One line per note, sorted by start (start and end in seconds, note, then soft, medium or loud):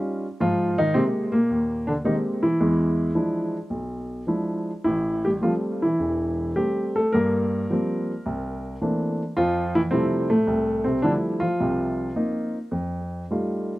0.00 0.25 G3 soft
0.00 0.25 C#4 soft
0.00 0.25 D#4 soft
0.00 0.25 F4 medium
0.40 0.89 G#2 medium
0.40 0.76 F3 medium
0.40 0.80 F4 medium
0.78 0.94 D#3 medium
0.78 0.96 D#4 medium
0.94 1.03 C3 medium
0.94 1.35 G#3 medium
0.94 1.30 A#3 soft
0.94 1.03 C4 medium
0.94 1.35 G4 medium
1.32 1.84 A#2 medium
1.32 1.89 A#3 medium
1.50 1.98 D#2 medium
1.87 1.94 D3 medium
1.87 1.92 D4 medium
2.04 2.15 D#3 medium
2.04 2.45 G#3 soft
2.04 2.45 A#3 soft
2.04 2.45 C4 soft
2.04 2.14 D#4 medium
2.04 2.45 G4 soft
2.43 3.51 E3 medium
2.43 3.14 E4 medium
2.60 3.09 E2 medium
2.60 3.09 G#3 medium
3.15 3.56 F3 soft
3.15 3.56 G#3 soft
3.15 3.56 D4 soft
3.15 3.56 E4 soft
3.70 4.21 B1 soft
4.27 4.69 F3 soft
4.27 4.70 G#3 soft
4.27 4.70 D4 soft
4.27 4.70 E4 soft
4.84 5.36 A1 medium
4.84 5.23 E3 medium
4.84 5.26 E4 medium
5.25 5.32 G3 medium
5.25 5.30 G4 medium
5.42 5.53 F3 medium
5.42 5.84 G3 soft
5.42 5.84 A3 soft
5.42 5.85 C4 soft
5.42 5.52 F4 medium
5.82 6.55 E3 medium
5.82 6.54 E4 medium
5.99 6.50 E1 medium
6.56 6.99 G3 soft
6.56 6.96 A3 soft
6.56 6.99 C4 soft
6.56 6.98 G4 medium
6.96 7.14 A3 medium
6.96 7.15 A4 medium
7.12 7.64 G2 medium
7.12 7.70 A#3 medium
7.12 8.77 A#4 medium
7.70 8.11 F3 soft
7.70 8.11 G3 soft
7.70 8.11 A#3 soft
7.70 8.12 C4 medium
8.26 8.74 C2 medium
8.82 9.22 E3 soft
8.82 9.22 A3 soft
8.82 9.22 A#3 soft
8.82 9.22 C4 soft
8.82 9.22 D4 soft
9.37 9.85 F2 medium
9.37 9.73 F3 medium
9.37 9.76 F4 medium
9.75 9.81 E3 medium
9.75 9.80 E4 medium
9.91 10.28 C3 medium
9.91 10.32 F3 soft
9.91 10.32 G3 soft
9.91 10.28 A3 soft
9.91 10.31 C4 medium
9.91 10.32 E4 medium
10.30 10.82 A2 medium
10.30 10.87 A3 medium
10.47 10.96 C2 medium
10.84 11.02 C3 medium
10.84 11.03 C4 medium
11.02 11.13 D3 medium
11.02 11.41 F3 soft
11.02 11.44 G3 soft
11.02 11.43 A3 soft
11.02 11.11 D4 medium
11.02 11.44 E4 medium
11.40 12.50 F3 medium
11.40 12.48 F4 medium
11.60 12.08 C2 medium
11.60 12.08 C3 medium
12.16 12.56 A#3 soft
12.16 12.56 C4 soft
12.16 12.56 D#4 medium
12.71 13.22 F2 medium
13.31 13.72 G3 soft
13.31 13.72 A3 soft
13.31 13.73 D#4 soft
13.31 13.73 F4 soft